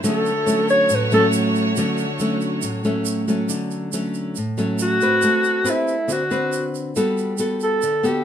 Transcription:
0.04 nylon-string guitar D3 F#3 A3 C#4, violin section A3 F#4 C#5, shaker
0.08 alto saxophone A4
0.26 shaker
0.46 nylon-string guitar F#3 A3 C#4, shaker
0.69 alto saxophone C#5, shaker
0.89 nylon-string guitar A2, shaker
0.95 alto saxophone B4
1.11 nylon-string guitar F#3 A3 C#4, alto saxophone A4, shaker
1.33 shaker
1.56 shaker
1.76 nylon-string guitar D3 F#3 A3 C#4, shaker
1.98 shaker
2.19 nylon-string guitar F#3 A3 C#4, shaker
2.41 shaker
2.62 nylon-string guitar A2, shaker
2.84 nylon-string guitar F#3 A3 C#4, shaker
3.05 shaker
3.28 nylon-string guitar F#3 A3 C#4, shaker
3.49 nylon-string guitar D3, shaker
3.71 shaker
3.93 nylon-string guitar F#3 A3 C#4, shaker
4.14 shaker
4.36 nylon-string guitar A2, shaker
4.58 nylon-string guitar F#3 A3 C#4, shaker
4.79 alto saxophone F#4, shaker
5.01 nylon-string guitar C4 B4, shaker
5.22 nylon-string guitar A3, shaker
5.44 shaker
5.64 nylon-string guitar C4 G4 B4, shaker
5.70 alto saxophone E4
5.88 shaker
6.08 nylon-string guitar D3 C4 F#4 B4, shaker
6.12 alto saxophone F#4
6.31 nylon-string guitar C4 F#4 B4, shaker
6.53 shaker
6.75 shaker
6.96 nylon-string guitar G3 B3 F#4 A4, shaker
7.18 shaker
7.38 nylon-string guitar B3 F#4 A4, shaker
7.60 alto saxophone A4, shaker
7.82 nylon-string guitar D3, shaker
8.03 nylon-string guitar B3 F#4 A4, alto saxophone G4, shaker

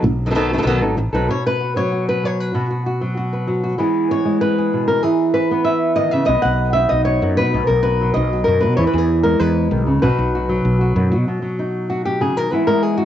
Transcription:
0.02 fretless electric bass B1, muted nylon-string guitar stroke
0.26 nylon-string guitar D#3 F#3 B3 D#4 A4
0.30 nylon-string guitar D#3 F#3 B3 D#4 A4
0.35 nylon-string guitar B2 D#3 F#3 B3 D#4 A4
0.53 nylon-string guitar D#3 F#3 B3 D#4 A4
0.57 nylon-string guitar D#3 F#3 B3 D#4 A4
0.62 fretless electric bass B1, nylon-string guitar D#3 F#3 B3 D#4 A4
0.66 nylon-string guitar B2 D#3 F#3 B3 D#4 A4
0.81 fretless electric bass G#1, nylon-string guitar F#3 B3 D#4 A4
0.97 fretless electric bass A1, muted nylon-string guitar stroke
1.12 fretless electric bass B1, nylon-string guitar F#3 B3 D#4 A4 B4
1.28 nylon-string guitar B2 C#5
1.47 nylon-string guitar B4
1.61 nylon-string guitar F#4
1.76 nylon-string guitar F#3 C#5
1.92 nylon-string guitar F#4
2.09 nylon-string guitar B4
2.24 nylon-string guitar F#3 C#5
2.40 nylon-string guitar B4
2.54 nylon-string guitar B2 F#4
2.71 nylon-string guitar F#4
2.86 nylon-string guitar F#4
3.01 nylon-string guitar F#3
3.17 nylon-string guitar F#4
3.33 nylon-string guitar B4
3.47 nylon-string guitar F#3
3.64 nylon-string guitar F#4
3.78 nylon-string guitar E3 G#3 B3 G#4
4.11 nylon-string guitar C#5
4.25 nylon-string guitar G#3
4.41 nylon-string guitar B4
4.58 nylon-string guitar G#4
4.73 nylon-string guitar B2
4.88 nylon-string guitar A#4
5.03 nylon-string guitar E3 G#4
5.34 nylon-string guitar B4
5.51 nylon-string guitar B3
5.64 nylon-string guitar E5
5.96 nylon-string guitar D#3 D#5
6.11 nylon-string guitar C#3 E5
6.26 fretless electric bass B1, nylon-string guitar B3 D#5
6.42 fretless electric bass B1, nylon-string guitar F#5
6.73 nylon-string guitar D#4 E5
6.89 fretless electric bass B1, nylon-string guitar D#5
7.05 nylon-string guitar C#5
7.22 fretless electric bass F#2, nylon-string guitar F#3
7.37 fretless electric bass B2, nylon-string guitar B4
7.54 fretless electric bass B1, nylon-string guitar B2 D#4
7.67 fretless electric bass B1, nylon-string guitar A#4
7.83 nylon-string guitar B4
8.01 nylon-string guitar F#3
8.14 fretless electric bass B1, nylon-string guitar D#5
8.33 nylon-string guitar F#4
8.44 fretless electric bass F#2, nylon-string guitar F#3 A#4
8.60 fretless electric bass B2, nylon-string guitar B4
8.77 fretless electric bass E2, nylon-string guitar E3 C#5
8.87 nylon-string guitar B4
8.93 fretless electric bass E2, nylon-string guitar G#4
8.98 nylon-string guitar G#4
9.23 nylon-string guitar G#3 A#4
9.40 fretless electric bass E2, nylon-string guitar B4
9.71 fretless electric bass B1, nylon-string guitar D#3
9.86 fretless electric bass C#2, nylon-string guitar C#3
10.02 fretless electric bass B1, nylon-string guitar B2 F#3 D#4 F#4 B4
10.19 fretless electric bass B1
10.35 nylon-string guitar F#4
10.49 nylon-string guitar F#3
10.65 fretless electric bass B1
10.81 nylon-string guitar F#4
10.96 fretless electric bass F#2, nylon-string guitar B2
11.12 fretless electric bass B2, nylon-string guitar F#4
11.28 nylon-string guitar B2
11.42 nylon-string guitar F#3
11.59 nylon-string guitar D#4
11.90 nylon-string guitar F#4
12.05 nylon-string guitar G4
12.20 nylon-string guitar C#3 G#4
12.36 nylon-string guitar D#3 A#4
12.52 nylon-string guitar E3 G#3 B3 E4 B4
12.67 nylon-string guitar G#3 A#4
12.83 nylon-string guitar G#4
12.98 nylon-string guitar F#4

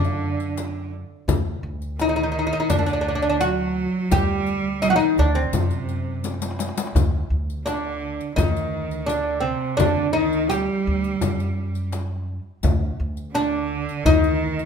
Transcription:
Already playing: upright bass F#2, cello D3, oud D4
0.05 riq
0.22 darbuka ka
0.40 riq
0.57 riq, darbuka tek, frame drum
0.93 darbuka ka
1.28 upright bass D2, riq, darbuka dum, frame drum
1.63 upright bass D2, darbuka ka
1.82 riq
1.99 cello D#3, oud D#4, riq, darbuka tek, frame drum
2.09 oud D#4
2.16 oud D#4, darbuka ka
2.23 oud D#4
2.32 oud D#4
2.39 oud D#4
2.47 oud D#4
2.52 oud D#4, riq
2.60 oud D#4
2.70 upright bass D2, cello D#3, oud D4, riq, darbuka dum, frame drum
2.79 oud D4
2.83 cello D3, oud D4
2.88 riq
2.93 oud D4
3.01 oud D4
3.06 oud D4, darbuka ka
3.15 oud D4
3.22 oud D4
3.30 oud D4
3.41 cello F#3, oud F#4, riq, darbuka tek, frame drum
3.77 darbuka ka
4.11 upright bass D2, cello G3, oud G4, riq, frame drum, darbuka dum
4.47 riq
4.66 darbuka ka
4.82 cello D#3, oud D#4, riq, darbuka tek, frame drum
4.90 oud F#4
4.96 oud D#4, riq
5.02 darbuka ka
5.18 upright bass D2, oud D4, riq
5.35 cello C3, oud C4, riq, darbuka ka
5.53 upright bass F#2, riq, frame drum, darbuka dum
5.71 riq
5.89 riq, darbuka ka
6.08 darbuka ka
6.24 riq, darbuka tek, frame drum
6.34 darbuka ka
6.42 riq, darbuka tek
6.51 darbuka ka
6.59 riq, darbuka tek
6.69 darbuka ka
6.77 riq, darbuka tek
6.87 darbuka ka
6.95 upright bass D2, riq, darbuka dum, frame drum
7.30 upright bass D2, darbuka ka
7.50 riq
7.66 cello D3, oud D4, riq, darbuka tek, frame drum
7.85 darbuka ka
8.21 riq
8.36 upright bass D2, cello D#3, oud D#4, riq, frame drum, darbuka dum
8.57 riq
8.74 darbuka ka
8.91 riq
9.06 cello D3, oud D4, riq, darbuka tek, frame drum
9.40 cello C3, oud C4, darbuka ka
9.77 upright bass D2, cello D3, oud D4, riq, darbuka dum, frame drum
10.13 cello D#3, oud D#4, darbuka ka
10.33 riq
10.49 cello G3, oud G4, riq, darbuka tek, frame drum
10.68 darbuka ka
10.87 upright bass D2
11.04 riq
11.21 upright bass F#2, riq, darbuka dum, frame drum
11.40 riq
11.58 darbuka ka
11.75 riq
11.92 riq, darbuka tek, frame drum
12.28 darbuka ka
12.63 upright bass D2, riq, darbuka dum, frame drum
13.00 upright bass D2, darbuka ka
13.17 riq
13.33 cello D3, oud D4, riq, darbuka tek, frame drum
13.52 darbuka ka
13.89 riq
14.04 upright bass D2, cello D#3, oud D#4, riq, darbuka dum, frame drum
14.24 riq
14.42 darbuka ka
14.59 riq

